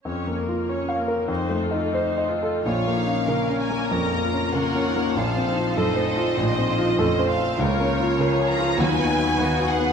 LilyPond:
<<
  \new Staff \with { instrumentName = "Violin section" } { \time 4/4 \key bes \minor \tempo 4 = 98 r1 | f''4. aes''8 bes''4 ges''4 | f''4 ees''2~ ees''8 f''8 | des''4. bes''8 aes''4. fis''8 | }
  \new Staff \with { instrumentName = "Violin section" } { \time 4/4 \key bes \minor << { r1 | des''2. des''4 | c''4 c''8 c''2~ c''8 | des''2 b'2 | } \\ { r1 | des''4 bes'2 bes'4 | a'2 c''4 c''4 | bes'4 aes'4 fis'8 b'8 fis'8 aes'8 | } >> }
  \new Staff \with { instrumentName = "Grand piano" } { \time 4/4 \key bes \minor \tuplet 3/2 { f,8 bes8 f'8 des''8 f''8 bes'8 f,8 a8 ees'8 c''8 ees''8 a'8 } | \tuplet 3/2 { bes,,8 bes8 des'8 bes'8 des'8 bes8 f,8 bes8 des'8 bes'8 des'8 bes8 } | \tuplet 3/2 { bes,,8 c'8 f'8 a'8 c''8 f'8 bes,,8 c'8 f'8 a'8 c''8 f'8 } | \tuplet 3/2 { des,8 des'8 f'8 bes'8 des''8 f'8 dis,8 b8 fis'8 b'8 fis'8 b8 } | }
  \new Staff \with { instrumentName = "Viola section" } { \time 4/4 \key bes \minor << { des'8 bes8 des'8 bes8 ees'8 f'8 ees'8 f'8 | f'8 ees'8 des'4 des'8 f'4. | f'8 ees'2~ ees'8 des'8 c'8 | f'8 f'4. dis'2 | } \\ { des''8 bes'8 des''8 bes'8 c''8 a'8 c''8 a'8 | f4 bes4 des'4 bes8 ees8 | f4 a4 f8 f8 a4 | bes4 f8 f8 fis4 b4 | } >> }
  \new Staff \with { instrumentName = "Cello section" } { \clef bass \time 4/4 \key bes \minor r1 | bes,4 des4 f4 des4 | bes,4 ges,4 a,4 f,4 | des,4 des4 dis,4 dis4 | }
>>